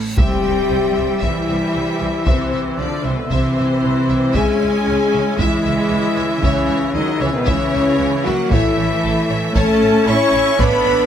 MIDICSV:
0, 0, Header, 1, 11, 480
1, 0, Start_track
1, 0, Tempo, 520833
1, 166, Time_signature, 4, 2, 24, 8
1, 10193, End_track
2, 0, Start_track
2, 0, Title_t, "Violin section"
2, 0, Program_c, 0, 48
2, 167, Note_on_c, 0, 76, 49
2, 390, Note_off_c, 0, 76, 0
2, 408, Note_on_c, 0, 76, 36
2, 482, Note_off_c, 0, 76, 0
2, 639, Note_on_c, 0, 72, 31
2, 713, Note_off_c, 0, 72, 0
2, 881, Note_on_c, 0, 76, 35
2, 955, Note_off_c, 0, 76, 0
2, 1106, Note_on_c, 0, 76, 46
2, 1340, Note_off_c, 0, 76, 0
2, 1365, Note_on_c, 0, 76, 36
2, 1439, Note_off_c, 0, 76, 0
2, 1598, Note_on_c, 0, 72, 37
2, 1672, Note_off_c, 0, 72, 0
2, 1836, Note_on_c, 0, 76, 39
2, 1910, Note_off_c, 0, 76, 0
2, 2085, Note_on_c, 0, 76, 49
2, 2310, Note_off_c, 0, 76, 0
2, 2331, Note_on_c, 0, 76, 34
2, 2405, Note_off_c, 0, 76, 0
2, 2566, Note_on_c, 0, 72, 36
2, 2640, Note_off_c, 0, 72, 0
2, 2815, Note_on_c, 0, 76, 34
2, 2888, Note_off_c, 0, 76, 0
2, 3055, Note_on_c, 0, 76, 48
2, 3276, Note_off_c, 0, 76, 0
2, 3297, Note_on_c, 0, 76, 35
2, 3371, Note_off_c, 0, 76, 0
2, 3550, Note_on_c, 0, 72, 33
2, 3624, Note_off_c, 0, 72, 0
2, 3773, Note_on_c, 0, 76, 45
2, 3846, Note_off_c, 0, 76, 0
2, 4004, Note_on_c, 0, 76, 49
2, 4230, Note_off_c, 0, 76, 0
2, 4255, Note_on_c, 0, 76, 33
2, 4329, Note_off_c, 0, 76, 0
2, 4493, Note_on_c, 0, 73, 33
2, 4566, Note_off_c, 0, 73, 0
2, 4734, Note_on_c, 0, 76, 38
2, 4807, Note_off_c, 0, 76, 0
2, 4975, Note_on_c, 0, 76, 59
2, 5195, Note_off_c, 0, 76, 0
2, 5210, Note_on_c, 0, 76, 42
2, 5284, Note_off_c, 0, 76, 0
2, 5444, Note_on_c, 0, 73, 41
2, 5518, Note_off_c, 0, 73, 0
2, 5692, Note_on_c, 0, 76, 49
2, 5766, Note_off_c, 0, 76, 0
2, 5931, Note_on_c, 0, 76, 51
2, 6152, Note_off_c, 0, 76, 0
2, 6164, Note_on_c, 0, 76, 40
2, 6237, Note_off_c, 0, 76, 0
2, 6406, Note_on_c, 0, 73, 38
2, 6480, Note_off_c, 0, 73, 0
2, 6646, Note_on_c, 0, 76, 45
2, 6719, Note_off_c, 0, 76, 0
2, 6881, Note_on_c, 0, 76, 61
2, 7106, Note_off_c, 0, 76, 0
2, 7135, Note_on_c, 0, 76, 43
2, 7209, Note_off_c, 0, 76, 0
2, 7371, Note_on_c, 0, 73, 44
2, 7444, Note_off_c, 0, 73, 0
2, 7620, Note_on_c, 0, 76, 55
2, 7693, Note_off_c, 0, 76, 0
2, 7856, Note_on_c, 0, 73, 66
2, 8074, Note_off_c, 0, 73, 0
2, 8099, Note_on_c, 0, 73, 48
2, 8172, Note_off_c, 0, 73, 0
2, 8347, Note_on_c, 0, 69, 48
2, 8421, Note_off_c, 0, 69, 0
2, 8570, Note_on_c, 0, 73, 47
2, 8643, Note_off_c, 0, 73, 0
2, 8814, Note_on_c, 0, 73, 75
2, 9033, Note_off_c, 0, 73, 0
2, 9057, Note_on_c, 0, 73, 46
2, 9131, Note_off_c, 0, 73, 0
2, 9303, Note_on_c, 0, 69, 56
2, 9377, Note_off_c, 0, 69, 0
2, 9540, Note_on_c, 0, 73, 59
2, 9614, Note_off_c, 0, 73, 0
2, 9780, Note_on_c, 0, 73, 61
2, 9997, Note_off_c, 0, 73, 0
2, 10016, Note_on_c, 0, 73, 46
2, 10090, Note_off_c, 0, 73, 0
2, 10193, End_track
3, 0, Start_track
3, 0, Title_t, "Violin section"
3, 0, Program_c, 1, 48
3, 164, Note_on_c, 1, 79, 60
3, 1091, Note_off_c, 1, 79, 0
3, 1125, Note_on_c, 1, 76, 54
3, 2085, Note_on_c, 1, 72, 48
3, 2088, Note_off_c, 1, 76, 0
3, 2558, Note_off_c, 1, 72, 0
3, 2559, Note_on_c, 1, 74, 50
3, 2799, Note_on_c, 1, 72, 49
3, 2800, Note_off_c, 1, 74, 0
3, 2918, Note_on_c, 1, 71, 44
3, 2925, Note_off_c, 1, 72, 0
3, 3033, Note_on_c, 1, 72, 60
3, 3044, Note_off_c, 1, 71, 0
3, 3982, Note_off_c, 1, 72, 0
3, 4003, Note_on_c, 1, 80, 63
3, 4961, Note_on_c, 1, 76, 64
3, 4965, Note_off_c, 1, 80, 0
3, 5904, Note_off_c, 1, 76, 0
3, 5925, Note_on_c, 1, 73, 60
3, 6400, Note_on_c, 1, 75, 59
3, 6405, Note_off_c, 1, 73, 0
3, 6638, Note_off_c, 1, 75, 0
3, 6641, Note_on_c, 1, 73, 58
3, 6763, Note_off_c, 1, 73, 0
3, 6765, Note_on_c, 1, 71, 59
3, 6882, Note_on_c, 1, 73, 69
3, 6885, Note_off_c, 1, 71, 0
3, 7601, Note_on_c, 1, 78, 63
3, 7603, Note_off_c, 1, 73, 0
3, 7843, Note_off_c, 1, 78, 0
3, 7844, Note_on_c, 1, 76, 68
3, 8785, Note_off_c, 1, 76, 0
3, 8804, Note_on_c, 1, 81, 78
3, 9275, Note_off_c, 1, 81, 0
3, 9288, Note_on_c, 1, 85, 80
3, 9762, Note_on_c, 1, 83, 83
3, 9767, Note_off_c, 1, 85, 0
3, 10193, Note_off_c, 1, 83, 0
3, 10193, End_track
4, 0, Start_track
4, 0, Title_t, "Woodwind section"
4, 0, Program_c, 2, 71
4, 160, Note_on_c, 2, 64, 45
4, 162, Note_on_c, 2, 76, 46
4, 164, Note_on_c, 2, 72, 45
4, 3970, Note_off_c, 2, 64, 0
4, 3971, Note_off_c, 2, 76, 0
4, 3972, Note_off_c, 2, 72, 0
4, 4004, Note_on_c, 2, 76, 52
4, 4005, Note_on_c, 2, 61, 51
4, 4007, Note_on_c, 2, 68, 52
4, 4010, Note_on_c, 2, 64, 50
4, 7681, Note_off_c, 2, 61, 0
4, 7681, Note_off_c, 2, 64, 0
4, 7681, Note_off_c, 2, 68, 0
4, 7681, Note_off_c, 2, 76, 0
4, 7838, Note_on_c, 2, 76, 67
4, 7839, Note_on_c, 2, 64, 69
4, 7842, Note_on_c, 2, 69, 66
4, 7842, Note_on_c, 2, 73, 65
4, 10193, Note_off_c, 2, 64, 0
4, 10193, Note_off_c, 2, 69, 0
4, 10193, Note_off_c, 2, 73, 0
4, 10193, Note_off_c, 2, 76, 0
4, 10193, End_track
5, 0, Start_track
5, 0, Title_t, "French horn section"
5, 0, Program_c, 3, 60
5, 173, Note_on_c, 3, 67, 67
5, 1095, Note_off_c, 3, 67, 0
5, 1146, Note_on_c, 3, 64, 57
5, 2080, Note_off_c, 3, 64, 0
5, 2094, Note_on_c, 3, 60, 60
5, 2563, Note_off_c, 3, 60, 0
5, 2566, Note_on_c, 3, 62, 56
5, 2803, Note_off_c, 3, 62, 0
5, 2816, Note_on_c, 3, 60, 52
5, 2933, Note_off_c, 3, 60, 0
5, 2937, Note_on_c, 3, 59, 48
5, 3051, Note_off_c, 3, 59, 0
5, 3051, Note_on_c, 3, 60, 67
5, 3991, Note_off_c, 3, 60, 0
5, 4003, Note_on_c, 3, 68, 70
5, 4963, Note_on_c, 3, 64, 68
5, 4965, Note_off_c, 3, 68, 0
5, 5905, Note_off_c, 3, 64, 0
5, 5915, Note_on_c, 3, 61, 70
5, 6400, Note_off_c, 3, 61, 0
5, 6403, Note_on_c, 3, 63, 63
5, 6643, Note_on_c, 3, 61, 68
5, 6644, Note_off_c, 3, 63, 0
5, 6764, Note_off_c, 3, 61, 0
5, 6777, Note_on_c, 3, 59, 61
5, 6889, Note_on_c, 3, 61, 72
5, 6891, Note_off_c, 3, 59, 0
5, 7601, Note_on_c, 3, 66, 76
5, 7607, Note_off_c, 3, 61, 0
5, 7843, Note_off_c, 3, 66, 0
5, 7845, Note_on_c, 3, 64, 77
5, 8657, Note_off_c, 3, 64, 0
5, 8813, Note_on_c, 3, 69, 90
5, 9280, Note_off_c, 3, 69, 0
5, 9287, Note_on_c, 3, 73, 98
5, 9755, Note_on_c, 3, 71, 95
5, 9757, Note_off_c, 3, 73, 0
5, 10193, Note_off_c, 3, 71, 0
5, 10193, End_track
6, 0, Start_track
6, 0, Title_t, "Viola section"
6, 0, Program_c, 4, 48
6, 159, Note_on_c, 4, 60, 53
6, 1088, Note_off_c, 4, 60, 0
6, 1124, Note_on_c, 4, 55, 56
6, 2088, Note_off_c, 4, 55, 0
6, 2094, Note_on_c, 4, 52, 49
6, 2563, Note_off_c, 4, 52, 0
6, 2573, Note_on_c, 4, 53, 46
6, 2810, Note_on_c, 4, 52, 48
6, 2812, Note_off_c, 4, 53, 0
6, 2929, Note_on_c, 4, 50, 44
6, 2930, Note_off_c, 4, 52, 0
6, 3047, Note_off_c, 4, 50, 0
6, 3051, Note_on_c, 4, 52, 58
6, 4010, Note_off_c, 4, 52, 0
6, 4018, Note_on_c, 4, 61, 59
6, 4968, Note_on_c, 4, 56, 63
6, 4972, Note_off_c, 4, 61, 0
6, 5925, Note_on_c, 4, 52, 58
6, 5927, Note_off_c, 4, 56, 0
6, 6396, Note_off_c, 4, 52, 0
6, 6405, Note_on_c, 4, 54, 62
6, 6641, Note_off_c, 4, 54, 0
6, 6644, Note_on_c, 4, 52, 56
6, 6762, Note_off_c, 4, 52, 0
6, 6768, Note_on_c, 4, 51, 56
6, 6884, Note_off_c, 4, 51, 0
6, 6885, Note_on_c, 4, 52, 63
6, 7590, Note_off_c, 4, 52, 0
6, 7610, Note_on_c, 4, 58, 66
6, 7847, Note_off_c, 4, 58, 0
6, 7856, Note_on_c, 4, 57, 61
6, 8810, Note_on_c, 4, 61, 76
6, 8811, Note_off_c, 4, 57, 0
6, 9281, Note_on_c, 4, 64, 83
6, 9288, Note_off_c, 4, 61, 0
6, 9757, Note_on_c, 4, 62, 73
6, 9764, Note_off_c, 4, 64, 0
6, 10193, Note_off_c, 4, 62, 0
6, 10193, End_track
7, 0, Start_track
7, 0, Title_t, "Cello section"
7, 0, Program_c, 5, 48
7, 161, Note_on_c, 5, 55, 49
7, 1089, Note_off_c, 5, 55, 0
7, 1122, Note_on_c, 5, 52, 54
7, 2087, Note_off_c, 5, 52, 0
7, 2089, Note_on_c, 5, 48, 50
7, 2566, Note_on_c, 5, 50, 45
7, 2570, Note_off_c, 5, 48, 0
7, 2808, Note_off_c, 5, 50, 0
7, 2810, Note_on_c, 5, 48, 44
7, 2928, Note_off_c, 5, 48, 0
7, 2932, Note_on_c, 5, 47, 42
7, 3050, Note_on_c, 5, 48, 50
7, 3051, Note_off_c, 5, 47, 0
7, 3991, Note_off_c, 5, 48, 0
7, 4006, Note_on_c, 5, 56, 51
7, 4965, Note_on_c, 5, 52, 61
7, 4967, Note_off_c, 5, 56, 0
7, 5906, Note_off_c, 5, 52, 0
7, 5921, Note_on_c, 5, 49, 53
7, 6401, Note_on_c, 5, 51, 52
7, 6403, Note_off_c, 5, 49, 0
7, 6643, Note_off_c, 5, 51, 0
7, 6646, Note_on_c, 5, 49, 52
7, 6763, Note_on_c, 5, 47, 54
7, 6766, Note_off_c, 5, 49, 0
7, 6882, Note_off_c, 5, 47, 0
7, 6883, Note_on_c, 5, 49, 64
7, 7601, Note_on_c, 5, 54, 58
7, 7604, Note_off_c, 5, 49, 0
7, 7843, Note_off_c, 5, 54, 0
7, 7846, Note_on_c, 5, 52, 57
7, 8803, Note_on_c, 5, 57, 81
7, 8805, Note_off_c, 5, 52, 0
7, 9275, Note_off_c, 5, 57, 0
7, 9281, Note_on_c, 5, 61, 76
7, 9764, Note_off_c, 5, 61, 0
7, 9768, Note_on_c, 5, 59, 75
7, 10193, Note_off_c, 5, 59, 0
7, 10193, End_track
8, 0, Start_track
8, 0, Title_t, "Double bass section"
8, 0, Program_c, 6, 48
8, 161, Note_on_c, 6, 36, 43
8, 235, Note_off_c, 6, 36, 0
8, 410, Note_on_c, 6, 36, 33
8, 484, Note_off_c, 6, 36, 0
8, 645, Note_on_c, 6, 36, 34
8, 719, Note_off_c, 6, 36, 0
8, 894, Note_on_c, 6, 36, 36
8, 967, Note_off_c, 6, 36, 0
8, 1134, Note_on_c, 6, 36, 47
8, 1208, Note_off_c, 6, 36, 0
8, 1376, Note_on_c, 6, 36, 35
8, 1450, Note_off_c, 6, 36, 0
8, 1609, Note_on_c, 6, 36, 31
8, 1682, Note_off_c, 6, 36, 0
8, 1851, Note_on_c, 6, 36, 37
8, 1925, Note_off_c, 6, 36, 0
8, 2091, Note_on_c, 6, 36, 48
8, 2165, Note_off_c, 6, 36, 0
8, 2332, Note_on_c, 6, 36, 35
8, 2406, Note_off_c, 6, 36, 0
8, 2573, Note_on_c, 6, 36, 38
8, 2647, Note_off_c, 6, 36, 0
8, 2812, Note_on_c, 6, 36, 35
8, 2886, Note_off_c, 6, 36, 0
8, 3058, Note_on_c, 6, 36, 53
8, 3132, Note_off_c, 6, 36, 0
8, 3298, Note_on_c, 6, 36, 40
8, 3372, Note_off_c, 6, 36, 0
8, 3539, Note_on_c, 6, 36, 35
8, 3612, Note_off_c, 6, 36, 0
8, 3772, Note_on_c, 6, 36, 36
8, 3845, Note_off_c, 6, 36, 0
8, 4007, Note_on_c, 6, 37, 51
8, 4081, Note_off_c, 6, 37, 0
8, 4246, Note_on_c, 6, 37, 39
8, 4320, Note_off_c, 6, 37, 0
8, 4490, Note_on_c, 6, 37, 40
8, 4564, Note_off_c, 6, 37, 0
8, 4726, Note_on_c, 6, 37, 39
8, 4800, Note_off_c, 6, 37, 0
8, 4968, Note_on_c, 6, 37, 59
8, 5042, Note_off_c, 6, 37, 0
8, 5209, Note_on_c, 6, 37, 42
8, 5283, Note_off_c, 6, 37, 0
8, 5446, Note_on_c, 6, 37, 35
8, 5520, Note_off_c, 6, 37, 0
8, 5686, Note_on_c, 6, 37, 42
8, 5760, Note_off_c, 6, 37, 0
8, 5929, Note_on_c, 6, 37, 58
8, 6002, Note_off_c, 6, 37, 0
8, 6165, Note_on_c, 6, 37, 39
8, 6239, Note_off_c, 6, 37, 0
8, 6400, Note_on_c, 6, 37, 42
8, 6474, Note_off_c, 6, 37, 0
8, 6644, Note_on_c, 6, 37, 46
8, 6717, Note_off_c, 6, 37, 0
8, 6879, Note_on_c, 6, 37, 58
8, 6952, Note_off_c, 6, 37, 0
8, 7132, Note_on_c, 6, 37, 46
8, 7205, Note_off_c, 6, 37, 0
8, 7363, Note_on_c, 6, 37, 45
8, 7437, Note_off_c, 6, 37, 0
8, 7609, Note_on_c, 6, 37, 47
8, 7683, Note_off_c, 6, 37, 0
8, 7848, Note_on_c, 6, 33, 67
8, 7922, Note_off_c, 6, 33, 0
8, 8089, Note_on_c, 6, 33, 49
8, 8162, Note_off_c, 6, 33, 0
8, 8333, Note_on_c, 6, 33, 50
8, 8407, Note_off_c, 6, 33, 0
8, 8571, Note_on_c, 6, 33, 45
8, 8645, Note_off_c, 6, 33, 0
8, 8806, Note_on_c, 6, 33, 75
8, 8880, Note_off_c, 6, 33, 0
8, 9042, Note_on_c, 6, 33, 53
8, 9116, Note_off_c, 6, 33, 0
8, 9281, Note_on_c, 6, 33, 48
8, 9355, Note_off_c, 6, 33, 0
8, 9517, Note_on_c, 6, 33, 52
8, 9590, Note_off_c, 6, 33, 0
8, 9759, Note_on_c, 6, 33, 72
8, 9833, Note_off_c, 6, 33, 0
8, 10009, Note_on_c, 6, 33, 51
8, 10083, Note_off_c, 6, 33, 0
8, 10193, End_track
9, 0, Start_track
9, 0, Title_t, "Impact"
9, 0, Program_c, 7, 103
9, 162, Note_on_c, 7, 60, 51
9, 2088, Note_off_c, 7, 60, 0
9, 10193, End_track
10, 0, Start_track
10, 0, Title_t, "Reverse cymbal"
10, 0, Program_c, 8, 119
10, 0, Note_on_c, 8, 60, 41
10, 164, Note_off_c, 8, 60, 0
10, 10193, End_track
11, 0, Start_track
11, 0, Title_t, "Taiko and cinematic ensemble drums"
11, 161, Note_on_c, 9, 41, 77
11, 254, Note_off_c, 9, 41, 0
11, 1127, Note_on_c, 9, 41, 66
11, 1219, Note_off_c, 9, 41, 0
11, 2088, Note_on_c, 9, 41, 81
11, 2180, Note_off_c, 9, 41, 0
11, 3046, Note_on_c, 9, 41, 67
11, 3138, Note_off_c, 9, 41, 0
11, 4006, Note_on_c, 9, 41, 72
11, 4098, Note_off_c, 9, 41, 0
11, 4969, Note_on_c, 9, 41, 75
11, 5061, Note_off_c, 9, 41, 0
11, 5929, Note_on_c, 9, 41, 74
11, 6021, Note_off_c, 9, 41, 0
11, 6890, Note_on_c, 9, 41, 70
11, 6982, Note_off_c, 9, 41, 0
11, 7847, Note_on_c, 9, 41, 87
11, 7939, Note_off_c, 9, 41, 0
11, 8805, Note_on_c, 9, 41, 77
11, 8897, Note_off_c, 9, 41, 0
11, 9762, Note_on_c, 9, 41, 87
11, 9854, Note_off_c, 9, 41, 0
11, 10193, End_track
0, 0, End_of_file